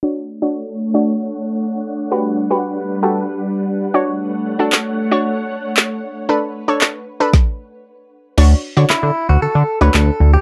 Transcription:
0.03 2.10 A3 medium
0.03 0.26 D4 medium
0.03 7.29 D4 medium
0.03 0.26 F#4 medium
0.03 2.10 C#5 medium
0.03 0.26 C#5 medium
0.03 3.90 F#5 medium
0.42 0.73 D4 medium
0.42 0.73 F#4 medium
0.42 0.73 C#5 medium
0.94 1.56 D4 medium
0.94 1.56 F#4 medium
0.94 1.56 C#5 medium
2.11 3.92 G3 medium
2.11 2.35 F#4 medium
2.11 2.35 G4 medium
2.11 3.92 B4 medium
2.11 2.35 B4 medium
2.51 2.82 F#4 medium
2.51 2.82 G4 medium
2.51 2.82 B4 medium
3.03 3.65 F#4 medium
3.03 3.65 G4 medium
3.03 3.65 A4 medium
3.94 7.30 A3 medium
3.94 4.46 D4 medium
3.94 4.46 F#4 medium
3.94 6.27 C#5 medium
3.94 4.47 C#5 loud
3.94 7.30 F#5 medium
4.59 4.90 D4 medium
4.59 4.90 F#4 medium
4.59 4.91 A4 medium
4.72 snare medium
4.72 clap loud
5.11 5.73 D4 medium
5.11 5.74 F#4 medium
5.11 5.74 C#5 medium
5.77 snare medium
5.77 clap loud
6.29 6.52 D4 medium
6.29 6.52 A4 medium
6.29 7.32 B4 medium
6.29 6.52 B4 medium
6.68 6.99 D4 medium
6.68 6.99 A4 medium
6.68 6.99 C#5 medium
6.81 snare medium
6.81 clap loud
7.20 7.33 D4 medium
7.20 7.33 A4 medium
7.20 7.34 B4 medium
7.33 kick loud
7.33 snare medium
8.38 8.54 D2 loud
8.38 8.61 D4 medium
8.38 8.61 F#4 medium
8.38 8.61 C#5 loud
8.38 crash medium
8.77 8.85 D3 medium
8.77 9.39 D4 medium
8.77 9.39 F#4 medium
8.77 9.39 C#5 medium
8.90 8.95 D3 soft
8.90 9.29 E4 medium
8.90 snare medium
8.90 clap loud
9.03 9.11 D3 medium
9.29 9.37 D2 loud
9.29 9.42 F#4 medium
9.42 9.47 D3 soft
9.42 9.81 A4 loud
9.55 9.63 D3 loud
9.81 9.89 D2 medium
9.81 10.20 D4 medium
9.81 10.20 F#4 medium
9.81 9.94 B4 loud
9.81 10.20 C#5 medium
9.94 10.11 D2 medium
9.94 10.33 A4 loud
9.94 snare medium
9.94 clap loud
10.20 10.37 D2 medium
10.34 10.41 G4 medium

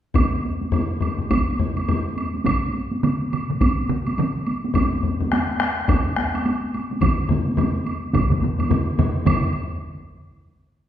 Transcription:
0.14 taiko medium
0.14 taiko low-mid medium
0.14 taiko high medium
0.14 high woodblock soft
0.45 taiko high soft
0.61 taiko high soft
0.72 taiko low-mid medium
0.72 taiko high medium
0.72 high woodblock soft
1.01 taiko low-mid medium
1.01 taiko high soft
1.01 high woodblock soft
1.18 taiko low-mid medium
1.31 taiko loud
1.31 taiko high medium
1.31 high woodblock soft
1.59 taiko low-mid medium
1.59 taiko high soft
1.77 taiko high medium
1.77 high woodblock soft
1.88 taiko low-mid medium
1.88 taiko high medium
1.88 high woodblock soft
2.17 taiko high medium
2.17 high woodblock soft
2.34 taiko high soft
2.45 taiko medium
2.45 taiko mid medium
2.45 taiko high medium
2.45 high woodblock medium
2.74 taiko high medium
2.91 taiko high soft
3.03 taiko mid medium
3.03 taiko high medium
3.03 high woodblock soft
3.32 taiko mid medium
3.32 taiko high soft
3.32 high woodblock soft
3.50 taiko mid medium
3.61 taiko medium
3.61 taiko high medium
3.61 high woodblock soft
3.90 taiko mid medium
3.90 taiko high medium
4.07 taiko high medium
4.07 high woodblock soft
4.18 taiko mid medium
4.18 taiko high medium
4.18 high woodblock soft
4.47 taiko high medium
4.47 high woodblock soft
4.64 taiko high medium
4.74 taiko medium
4.74 taiko low-mid medium
4.74 taiko high medium
4.74 high woodblock soft
5.03 taiko low-mid medium
5.03 taiko high medium
5.20 taiko low-mid medium
5.20 taiko high soft
5.32 taiko rim medium
5.32 taiko high medium
5.32 high woodblock soft
5.60 taiko rim medium
5.60 taiko high medium
5.60 high woodblock soft
5.88 taiko medium
5.88 taiko low-mid medium
5.88 taiko high medium
5.88 high woodblock soft
6.16 taiko rim medium
6.16 taiko high soft
6.34 taiko high medium
6.34 high woodblock soft
6.46 taiko high medium
6.46 high woodblock soft
6.74 taiko high medium
6.74 high woodblock soft
6.91 taiko high medium
7.01 taiko medium
7.01 taiko low-mid medium
7.01 taiko mid medium
7.01 taiko high medium
7.01 high woodblock medium
7.29 taiko low-mid medium
7.29 taiko mid medium
7.29 taiko high medium
7.48 taiko high soft
7.57 taiko low-mid medium
7.57 taiko mid medium
7.57 taiko high medium
7.57 high woodblock soft
7.86 taiko high soft
7.86 high woodblock soft
8.13 taiko medium
8.13 taiko low-mid medium
8.13 taiko mid medium
8.13 taiko high medium
8.13 high woodblock soft
8.30 taiko low-mid medium
8.30 taiko mid medium
8.41 taiko low-mid medium
8.41 taiko mid medium
8.41 taiko high soft
8.58 taiko low-mid medium
8.58 taiko mid medium
8.58 taiko high soft
8.58 high woodblock soft
8.69 taiko low-mid medium
8.69 taiko mid medium
8.69 taiko high medium
8.69 high woodblock soft
8.98 taiko low-mid medium
8.98 taiko mid medium
8.98 taiko high soft
8.98 high woodblock soft
9.25 taiko medium
9.25 taiko low-mid medium
9.25 taiko mid medium
9.25 taiko high medium
9.25 high woodblock medium

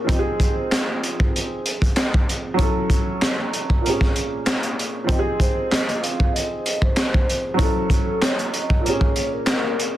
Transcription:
0.00 0.11 A#2 medium
0.00 0.10 A#3 medium
0.00 0.11 C#4 medium
0.00 0.11 G#4 medium
0.04 2.53 F3 medium
0.04 2.54 C4 medium
0.09 2.55 D#4 medium
0.09 0.18 G4 medium
0.09 kick loud
0.09 closed hi-hat medium
0.19 2.60 G#4 medium
0.40 kick medium
0.40 closed hi-hat medium
0.72 snare loud
0.72 clap medium
0.72 closed hi-hat loud
1.03 closed hi-hat medium
1.20 kick medium
1.36 closed hi-hat medium
1.66 closed hi-hat medium
1.82 kick medium
1.82 closed hi-hat medium
1.96 snare loud
1.96 clap medium
1.96 closed hi-hat medium
2.14 kick loud
2.29 closed hi-hat medium
2.54 3.79 F#3 medium
2.54 3.80 C#4 medium
2.59 3.82 E4 medium
2.59 3.83 A4 medium
2.59 kick loud
2.59 closed hi-hat medium
2.90 kick medium
2.90 closed hi-hat medium
3.22 snare loud
3.22 clap medium
3.22 closed hi-hat loud
3.54 closed hi-hat medium
3.70 kick medium
3.81 5.05 A#2 medium
3.81 5.06 A#3 medium
3.86 3.93 C4 medium
3.86 5.09 G#4 medium
3.86 closed hi-hat medium
3.93 5.11 C#4 medium
4.01 kick medium
4.01 snare soft
4.16 closed hi-hat medium
4.46 snare loud
4.46 clap loud
4.46 closed hi-hat medium
4.63 closed hi-hat medium
4.79 closed hi-hat medium
5.04 7.53 F3 medium
5.04 7.54 C4 medium
5.09 7.55 D#4 medium
5.09 5.18 G4 medium
5.09 kick loud
5.09 closed hi-hat medium
5.19 7.60 G#4 medium
5.40 5.69 C5 medium
5.40 kick medium
5.40 closed hi-hat medium
5.71 5.99 D#5 medium
5.71 snare loud
5.71 clap medium
5.71 closed hi-hat loud
5.89 closed hi-hat soft
6.02 6.30 F5 medium
6.02 closed hi-hat medium
6.20 kick medium
6.33 6.79 D#5 medium
6.33 closed hi-hat medium
6.66 closed hi-hat medium
6.82 7.55 C5 medium
6.82 kick medium
6.96 snare loud
6.96 clap loud
6.96 closed hi-hat loud
7.14 kick medium
7.29 closed hi-hat medium
7.54 8.79 F#3 medium
7.54 8.80 C#4 medium
7.59 8.82 E4 medium
7.59 8.83 A4 medium
7.59 kick loud
7.59 closed hi-hat medium
7.90 8.19 A4 medium
7.90 kick medium
7.90 closed hi-hat medium
8.22 8.50 C#5 medium
8.22 snare loud
8.22 clap medium
8.22 closed hi-hat loud
8.39 closed hi-hat soft
8.53 8.81 D#5 medium
8.53 closed hi-hat medium
8.70 kick medium
8.81 9.97 A#2 medium
8.81 9.97 A#3 medium
8.81 9.30 C#5 medium
8.86 8.93 C4 medium
8.86 9.97 G#4 medium
8.86 closed hi-hat medium
8.93 9.97 C#4 medium
9.01 kick medium
9.16 closed hi-hat medium
9.33 9.97 A#4 medium
9.46 snare loud
9.46 clap medium
9.46 closed hi-hat medium
9.79 closed hi-hat medium

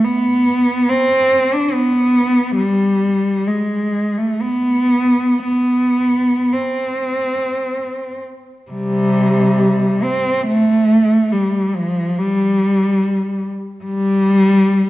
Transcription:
0.05 0.88 B3 medium
0.89 1.52 C4 medium
1.54 1.73 D4 medium
1.73 2.57 B3 medium
2.57 3.45 G3 medium
3.47 4.18 G#3 medium
4.18 4.43 A3 medium
4.42 5.43 B3 medium
5.44 6.49 B3 medium
6.53 8.18 C4 soft
8.72 10.01 C3 medium
8.72 10.01 G3 medium
10.03 10.47 C4 medium
10.47 11.30 A3 medium
11.32 11.74 G3 medium
11.75 12.18 F3 medium
12.19 13.44 G3 medium
13.85 14.90 G3 medium

